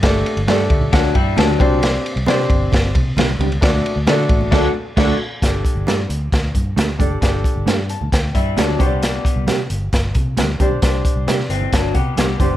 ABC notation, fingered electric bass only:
X:1
M:4/4
L:1/16
Q:1/4=133
K:G
V:1 name="Fingered electric bass" clef=bass
G,,,2 z G,,, G,,2 D,,2 D,,2 G,,2 D,,2 C,,2- | C,,2 z C,, C,2 G,,,2 G,,,2 C,2 C,,2 ^C,,2 | D,,2 z D,, D,2 A,,,2 D,,2 z2 D,,2 z2 | G,,,2 z G,,, G,,2 D,,2 D,,2 G,,2 D,,2 F,,,2 |
G,,,2 z G,,, G,,3 D,, D,,2 G,,2 D,,2 C,,2- | C,,2 z C,, C,2 G,,,2 G,,,2 C,2 D,,2 B,,,2 | C,,2 z C,, C,2 G,,,2 G,,,2 C,2 C,,2 F,,,2 |]